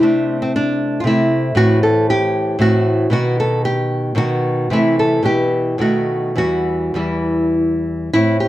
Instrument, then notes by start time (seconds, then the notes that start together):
nylon-string guitar
0.00 C3 A3 C4 D4
0.42 C4
0.56 D4
1.00 C3 F4
1.05 A3 C4 E4
1.55 A2 E3 C4 F#4
1.83 A4
2.10 G4
2.59 A2 E3 C4 F#4
3.10 B2 D#3 B3 F#4
3.40 A4
3.65 G4
4.15 B2 D#3 B3 F#4
4.70 C3 E3 A3 E4
4.99 A4
5.23 B2 E3 B3 G4
5.78 B2 D#3 A3 F#4
6.36 E2 E3 G3 F#4
6.94 E2 E3 G3 E4
8.13 A2 C4 E4
8.40 G4